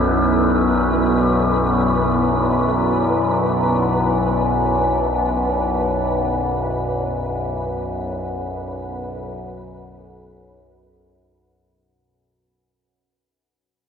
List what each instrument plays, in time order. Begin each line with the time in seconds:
Already playing: synth drone B1 F#2, ambient pad B3 E4 A4 D5, synth texture B4
3.08 ambient pad B4